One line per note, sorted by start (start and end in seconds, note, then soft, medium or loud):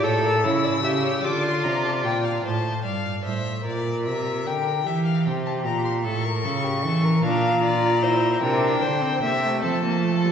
0.04 0.46 A2 medium
0.04 0.46 A4 loud
0.04 0.23 C#5 medium
0.04 1.21 E6 medium
0.24 0.43 A#4 medium
0.44 0.84 C#3 medium
0.44 0.82 E4 medium
0.44 0.63 C#5 medium
0.64 0.72 D5 medium
0.83 1.23 C#3 medium
0.83 1.26 G4 medium
0.83 0.92 E5 medium
1.04 1.22 C#5 medium
1.23 1.66 D3 medium
1.23 2.45 F4 medium
1.23 2.42 D5 medium
1.23 1.45 D6 medium
1.43 1.65 C6 medium
1.63 2.07 C3 medium
1.63 1.84 A#5 medium
1.84 1.92 A5 medium
2.04 2.45 A#2 medium
2.04 2.26 G5 medium
2.25 2.43 F5 medium
2.44 2.83 A2 medium
2.44 2.82 C5 medium
2.44 2.82 A5 medium
2.85 3.28 G2 medium
2.85 3.24 D5 medium
2.85 3.24 F5 medium
3.24 3.66 A2 medium
3.24 3.65 C5 medium
3.24 3.64 E5 medium
3.65 4.08 A#2 medium
3.65 4.83 A#4 medium
3.65 4.05 D5 medium
4.06 4.48 C3 medium
4.06 4.48 E5 medium
4.46 4.85 D3 medium
4.46 4.88 G5 medium
4.85 5.28 E3 medium
4.85 6.02 G4 medium
4.85 5.05 E5 medium
5.05 5.25 F5 medium
5.26 5.67 C3 medium
5.26 5.34 G5 medium
5.46 5.53 A5 medium
5.65 6.06 A#2 medium
5.65 5.84 A#5 medium
5.85 5.93 C6 medium
6.04 6.46 A2 medium
6.04 6.26 A4 medium
6.04 7.21 C#6 medium
6.24 6.47 A#4 medium
6.44 6.85 C#3 medium
6.44 6.65 A4 medium
6.64 6.84 G4 medium
6.84 7.24 E3 medium
6.84 7.05 A4 medium
7.04 7.25 A#4 medium
7.23 8.41 A#2 medium
7.23 7.60 D4 medium
7.23 7.63 F5 medium
7.23 8.41 A#5 medium
7.63 8.02 F4 medium
7.63 8.05 D5 medium
8.03 8.44 E4 medium
8.03 8.43 C5 medium
8.43 8.82 C3 medium
8.43 9.04 D4 medium
8.43 8.84 A#4 medium
8.43 9.62 G5 medium
8.82 9.22 D3 medium
8.82 9.22 C5 medium
9.02 9.21 C4 medium
9.22 9.65 C3 medium
9.22 9.30 A#3 medium
9.22 9.63 E5 medium
9.43 9.64 A3 medium
9.62 10.32 F3 medium
9.62 9.83 C4 medium
9.62 10.32 A4 medium
9.62 10.32 A5 medium
9.83 10.06 A#3 medium
10.04 10.24 A3 medium
10.25 10.32 G3 medium